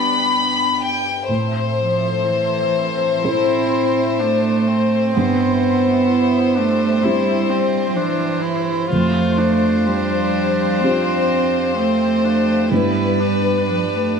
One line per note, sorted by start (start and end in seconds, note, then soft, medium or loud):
0.00 1.25 G2 medium
0.00 0.77 B3 medium
0.00 0.79 D4 medium
0.00 1.25 D4 soft
0.00 1.28 D4 soft
0.00 1.24 G4 soft
0.00 1.25 G4 soft
0.00 1.25 B4 soft
0.00 1.24 G5 soft
0.00 0.81 B5 medium
0.82 1.29 G5 medium
1.28 5.10 A2 soft
1.28 5.14 C4 soft
1.28 5.14 A4 soft
1.28 5.11 C5 medium
1.28 5.14 E5 soft
1.79 2.27 F3 medium
2.25 3.26 E3 medium
3.23 5.11 C4 soft
3.23 4.23 C4 medium
3.23 4.21 E4 medium
3.23 5.11 E4 soft
3.23 5.11 C5 soft
4.20 5.15 A3 medium
4.20 4.69 D4 medium
4.68 6.09 C4 medium
5.14 8.88 G2 medium
5.14 6.60 B3 medium
5.14 8.87 E4 soft
5.14 8.90 G4 medium
5.14 8.86 C5 medium
5.14 8.87 E5 soft
6.09 6.57 E4 medium
6.55 7.06 A3 medium
6.55 7.04 D4 medium
7.03 7.97 G3 medium
7.03 8.88 C4 soft
7.03 7.52 E4 medium
7.03 8.88 E4 soft
7.03 8.88 G4 soft
7.50 7.97 C4 medium
7.96 8.91 E3 medium
7.96 8.43 D4 medium
8.42 8.90 E4 medium
8.91 12.68 F2 soft
8.91 9.87 A3 medium
8.91 12.68 C4 medium
8.91 9.39 F4 medium
8.91 14.20 G4 medium
8.91 12.68 C5 medium
8.91 12.71 F5 soft
9.38 11.79 D4 medium
9.86 10.83 G3 medium
10.82 11.76 C4 medium
10.82 12.68 C4 soft
10.82 12.68 F4 soft
10.82 12.69 G4 soft
11.77 12.75 A3 medium
11.77 12.26 C4 medium
12.24 12.71 D4 medium
12.71 14.20 G2 medium
12.71 13.71 G3 medium
12.71 14.20 B3 soft
12.71 14.20 B3 medium
12.71 14.20 D4 soft
12.71 13.21 E4 medium
12.71 14.20 G4 soft
12.71 14.20 B4 medium
12.71 14.20 D5 soft
13.19 13.66 D4 medium
13.67 13.93 F3 medium
13.67 14.20 D4 medium
13.96 14.20 A3 medium